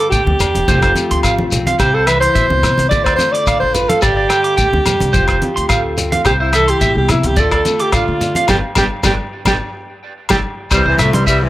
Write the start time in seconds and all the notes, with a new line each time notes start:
Already playing: G2 D3 G4
0.10 D2 B3 G4 G5, kick, closed hi-hat, shekere
0.26 D2, high conga
0.40 E2 D4, closed hi-hat, low conga, low agogo, shekere
0.55 E1, closed hi-hat, high conga
0.68 F1 F2 F3 A3 C4 F4 C5, kick, closed hi-hat, low conga, shekere
0.82 C5, kick, cross-stick, low agogo
0.95 F3, closed hi-hat, high conga, shekere
1.11 D2 C6, closed hi-hat
1.23 A1 F5, muted steel-string acoustic guitar stroke, kick, cross-stick, closed hi-hat, low agogo, shekere
1.39 A3, high conga
1.52 B1 C4, closed hi-hat, low conga, shekere
1.67 F5, closed hi-hat, high conga
1.79 C2 C3 E4 G4 C5, kick, cross-stick, closed hi-hat, low agogo, shekere
1.94 A4 C5
2.07 E3 B4 E5, cross-stick, closed hi-hat, low agogo, shekere
2.21 C5 C6, closed hi-hat
2.35 A1 B2 E5, kick, closed hi-hat, shekere
2.50 C2, high conga
2.63 C3, cross-stick, closed hi-hat, low conga, low agogo, shekere
2.78 C2, closed hi-hat, high conga
2.89 D2 D3 F4 D5, kick, closed hi-hat, low conga, shekere
3.04 C5 D5, kick, cross-stick, low agogo
3.16 C5, high conga, shekere
3.20 A3, closed hi-hat
3.32 D5 D6, closed hi-hat
3.47 D3 D4 F5, kick, cross-stick, closed hi-hat, low agogo, shekere
3.60 A1 C5
3.74 F4 B4, closed hi-hat, low conga, shekere
3.89 A4 F5, closed hi-hat, high conga
4.02 G1 G2 D4 G4 D5, kick, cross-stick, closed hi-hat, low agogo, shekere
4.17 D5
4.29 D3 G5, cross-stick, closed hi-hat, low agogo, shekere
4.44 D6, closed hi-hat
4.57 D2 G5, muted steel-string acoustic guitar stroke, kick, closed hi-hat, shekere
4.73 D2, high conga
4.85 E2 G2, closed hi-hat, low conga, low agogo, shekere
5.00 C2, closed hi-hat, high conga
5.13 F1 F2 F4 C5, kick, closed hi-hat, low conga, shekere
5.28 C5, kick, cross-stick, low agogo
5.42 closed hi-hat, high conga
5.56 D2 C6, closed hi-hat
5.69 A3 F5, kick, cross-stick, closed hi-hat, low agogo, shekere
5.98 C4, closed hi-hat, low conga, shekere
6.12 F5, closed hi-hat, high conga
6.25 C2 C3 G4 C5, kick, cross-stick, closed hi-hat, low agogo, shekere
6.40 E4 C5
6.53 E3 A4 E5, cross-stick, closed hi-hat, low agogo, shekere
6.68 G4 C6, closed hi-hat
6.81 A1 B2 E5, kick, closed hi-hat, shekere
6.95 C2 G4
7.09 C3 E4, cross-stick, closed hi-hat, low conga, low agogo, shekere
7.23 C2 G4, closed hi-hat, high conga
7.36 D2 D3 F4 A4 D5, kick, closed hi-hat, low conga, shekere
7.51 A4 D5, kick, cross-stick, low agogo
7.65 A3, closed hi-hat, high conga, shekere
7.79 G4 D6, closed hi-hat
7.92 D3 D4 F4 F5, kick, cross-stick, closed hi-hat, low agogo, shekere
8.08 D3
8.21 D4, closed hi-hat, low conga, shekere
8.35 F5, closed hi-hat, high conga
8.48 G1 B2 D3 G3 G4 B4 D5 G5, kick, snare, low conga, low agogo, shekere
8.75 G1 B2 D3 G3 G4 B4 D5 G5, kick, snare, low conga, low agogo, shekere
9.03 G1 B2 D3 G3 G4 B4 D5 G5, kick, snare, low conga, low agogo, shekere
9.45 G1 B2 D3 G3 G4 B4 D5 G5, kick, snare, low conga, low agogo, shekere
10.29 G1 A2 D3 G3 G4 A4 D5 G5, kick, snare, low conga, low agogo, shekere
10.71 C2 C3 E3 G3 C5, kick, cross-stick, closed hi-hat, low agogo, shekere
10.86 C2 C3 E3 C5
10.98 C2 F3 G3 A3 E5, cross-stick, closed hi-hat, low conga, low agogo, shekere
11.13 E3 G3 C6, closed hi-hat, high conga
11.27 E3 G3 E4 E5, kick, closed hi-hat, shekere
11.42 C3 E3